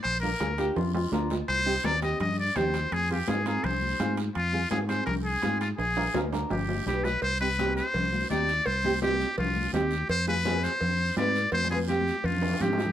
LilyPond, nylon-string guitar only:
\new Staff \with { instrumentName = "Nylon-string guitar" } { \time 4/4 \key f \dorian \tempo 4 = 167 r8 <d' f' bes'>8 <d' f' aes'>8 <d' f' g'>8 r4 <d' f' bes'>8 r8 | r8 <c' ees' g'>8 <c' ees' bes'>8 <c' ees' g'>8 r4 <c' ees' g'>8 r8 | r8 <c' f' aes'>8 <c' f' aes'>8 <c' f' bes'>8 r4 <c' f' aes'>8 r8 | r8 <c' f' aes'>8 <c' f' aes'>8 <c' f' aes'>8 r4 <c' f' aes'>8 r8 |
r8 <d' f' bes'>8 <d' f' bes'>8 <d' f' bes'>8 r4 <d' g' b'>8 r8 | \key c \minor r8 <c' ees' g'>8 <c' ees' g'>8 r4. <c' ees' g'>8 r8 | r8 <c' ees' g'>8 <c' ees' g'>8 r4. <c' ees' g'>8 r8 | r8 <c' f' aes'>8 <c' f' aes'>8 r4. <c' f' b'>8 r8 |
r8 <c' f' b'>8 <c' f' g'>8 r4. <c' f' g'>8 r8 | }